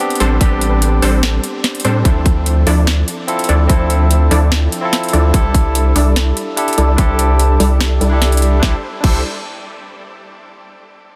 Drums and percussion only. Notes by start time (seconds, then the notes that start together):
0.10 closed hi-hat
0.15 closed hi-hat
0.20 closed hi-hat
0.41 kick, closed hi-hat
0.61 closed hi-hat
0.82 closed hi-hat
1.02 open hi-hat
1.23 snare, closed hi-hat
1.44 closed hi-hat
1.64 snare, closed hi-hat
1.75 closed hi-hat
1.80 closed hi-hat
1.85 closed hi-hat
2.05 kick, closed hi-hat
2.26 kick, closed hi-hat
2.46 closed hi-hat
2.67 open hi-hat
2.87 snare, closed hi-hat
3.08 closed hi-hat
3.28 closed hi-hat
3.39 closed hi-hat
3.44 closed hi-hat
3.49 closed hi-hat
3.70 kick, closed hi-hat
3.90 closed hi-hat
4.11 closed hi-hat
4.31 open hi-hat
4.52 snare, closed hi-hat
4.72 closed hi-hat
4.93 snare, closed hi-hat
5.03 closed hi-hat
5.09 closed hi-hat
5.13 closed hi-hat
5.34 kick, closed hi-hat
5.54 kick, closed hi-hat
5.75 closed hi-hat
5.96 open hi-hat
6.16 snare, closed hi-hat
6.37 closed hi-hat
6.57 closed hi-hat
6.68 closed hi-hat
6.73 closed hi-hat
6.78 closed hi-hat
6.98 kick, closed hi-hat
7.19 closed hi-hat
7.39 closed hi-hat
7.60 open hi-hat
7.81 snare, closed hi-hat
8.01 closed hi-hat
8.22 snare, closed hi-hat
8.32 closed hi-hat
8.37 closed hi-hat
8.42 closed hi-hat
8.63 kick, snare
9.04 kick, crash